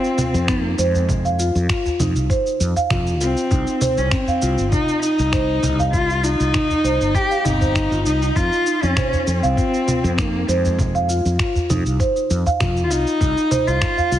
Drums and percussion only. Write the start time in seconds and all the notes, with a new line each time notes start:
0.04 shaker
0.18 low conga, shaker
0.34 shaker
0.48 finger snap, kick, shaker
0.78 shaker
0.94 udu, shaker
1.09 kick, low conga, shaker
1.25 shaker
1.39 shaker
1.55 shaker
1.69 finger snap, kick, shaker
1.86 udu, shaker
2.00 low conga, shaker
2.16 shaker
2.30 kick, shaker
2.46 shaker
2.60 shaker
2.76 udu, shaker
2.90 finger snap, kick, low conga, shaker
3.07 shaker
3.21 shaker
3.37 shaker
3.51 kick, shaker
3.67 shaker
3.81 low conga, shaker
3.98 shaker
4.11 finger snap, kick, shaker
4.27 udu, shaker
4.42 shaker
4.58 shaker
4.72 kick, low conga, shaker
4.88 shaker
5.02 shaker
5.19 shaker
5.33 finger snap, kick, shaker
5.63 low conga, shaker
5.79 udu, shaker
5.93 kick, shaker
6.10 shaker
6.24 shaker
6.40 shaker
6.54 finger snap, kick, low conga, shaker
6.70 udu, shaker
6.85 shaker
7.01 shaker
7.15 kick, shaker
7.31 shaker
7.45 low conga, shaker
7.61 udu, shaker
7.75 finger snap, kick, shaker
7.92 shaker
8.06 shaker
8.22 shaker
8.36 kick, shaker
8.52 shaker
8.66 shaker
8.83 shaker
8.97 finger snap, kick, low conga, shaker
9.13 udu, shaker
9.27 shaker
9.43 shaker
9.57 kick, shaker
9.74 shaker
9.88 low conga, shaker
10.04 shaker
10.18 finger snap, kick, shaker
10.49 shaker
10.65 udu, shaker
10.79 kick, low conga, shaker
10.95 shaker
11.09 shaker
11.26 shaker
11.39 finger snap, kick, shaker
11.55 udu, shaker
11.70 low conga, shaker
11.86 shaker
12.00 kick, shaker
12.16 shaker
12.30 shaker
12.46 udu, shaker
12.60 finger snap, kick, low conga, shaker
12.77 shaker
12.91 shaker
13.07 shaker
13.21 kick, shaker
13.37 shaker
13.51 low conga, shaker
13.68 shaker
13.81 finger snap, kick, shaker
13.98 udu, shaker
14.12 shaker